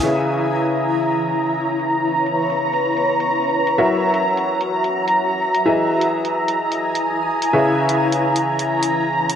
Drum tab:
HH |-----x-x-x-x---x|---x-x-x-x-x---x|---x-x-x-x-x---x|---x-x-x-x-x---x|

HH |---x-x-x-x-x---x|